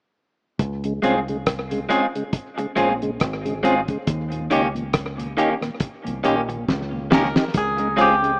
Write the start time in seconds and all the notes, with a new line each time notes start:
0.59 C#2, kick, closed hi-hat
0.84 C#3 G#3, closed hi-hat
1.02 C2 G#3 C4 C#4 F4 G#4, closed hi-hat
1.28 C#3 G#3, closed hi-hat
1.46 kick, cross-stick, closed hi-hat
1.71 C#3 G#3, closed hi-hat
1.89 G#3 C4 C#4 F4 G#4, closed hi-hat
2.15 C#3 G#3, closed hi-hat
2.33 kick, closed hi-hat
2.58 C#3 G#3, muted clean electric guitar stroke, closed hi-hat
2.76 A#1 G#3 C4 C#4 F4 G#4, closed hi-hat
3.02 C#3 G#3, closed hi-hat
3.20 G#1, kick, cross-stick, closed hi-hat
3.45 C#3 G#3, closed hi-hat
3.63 G#3 C4 C#4 F4 G#4, closed hi-hat
3.88 C#3 G#3, kick, closed hi-hat
4.07 D#2, kick, closed hi-hat
4.32 D#2 A#2, closed hi-hat
4.50 C#2 D#3 A#3 C#4 D#4 G4, closed hi-hat
4.75 D#2 A#2, closed hi-hat
4.93 kick, cross-stick, closed hi-hat
5.18 D#2 A#2, closed hi-hat
5.37 D#3 A#3 C#4 D#4 G4, closed hi-hat
5.61 D#2 A#2, cross-stick, closed hi-hat
5.80 kick, closed hi-hat
6.04 C2 D#2 A#2, closed hi-hat
6.24 A#1 D#3 A#3 C#4 D#4 G4, closed hi-hat
6.48 D#2 A#2, muted clean electric guitar stroke, closed hi-hat
6.68 C#2, kick, snare
6.92 D#2 A#2
7.11 D#3 A#3 C#4 D#4 G4 A#4, snare
7.35 D#4 G4, snare
7.54 C#2 G#4, kick, closed hi-hat
7.78 C#3 G#3, closed hi-hat
7.97 G#3 C4 C#4 F4 G#4, closed hi-hat
8.01 G4
8.22 C#3 G#3, closed hi-hat